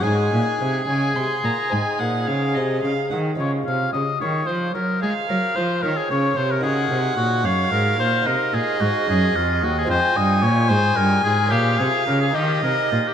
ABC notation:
X:1
M:12/8
L:1/16
Q:3/8=73
K:Abmix
V:1 name="Violin"
a6 a2 c'2 b2 a2 g2 f2 e2 f2 g2 | z12 f6 d6 | g6 f6 e12 | [K:Fm] a12 f6 e6 |]
V:2 name="Oboe"
A16- A6 z2 | d2 f2 e2 d2 c2 B2 A2 B2 c2 B A d2 c B | A4 G2 d2 B2 c2 B2 A2 G2 A2 F2 G A | [K:Fm] c2 e2 d2 c2 B2 A2 G2 A2 B A G2 B2 F G |]
V:3 name="Lute"
[A,DE]12 [A,CE]12 | [A,DF]24 | [B,EG]12 [A,E]12 | [K:Fm] [A,CF]12 [B,DF]6 [B,E]6 |]
V:4 name="Lute" clef=bass
A,,2 B,,2 C,2 D,2 C,2 B,,2 A,,2 B,,2 D,2 C,2 D,2 E,2 | D,2 C,2 D,2 E,2 F,2 G,2 A,2 G,2 F,2 E,2 D,2 C,2 | D,2 C,2 B,,2 G,,2 A,,2 B,,2 C,2 B,,2 A,,2 G,,2 F,,2 E,,2 | [K:Fm] F,,2 G,,2 B,,2 A,,2 G,,2 A,,2 B,,2 C,2 D,2 E,2 C,2 B,,2 |]
V:5 name="Cello" clef=bass
A,,2 B,,2 C,2 D,2 C,2 B,,2 A,,2 B,,2 D,2 C,2 D,2 E,2 | D,2 C,2 D,2 E,2 F,2 G,2 A,2 G,2 F,2 E,2 D,2 C,2 | D,2 C,2 B,,2 G,,2 A,,2 B,,2 C,2 B,,2 A,,2 G,,2 F,,2 E,,2 | [K:Fm] F,,2 G,,2 B,,2 A,,2 G,,2 A,,2 B,,2 C,2 D,2 E,2 C,2 B,,2 |]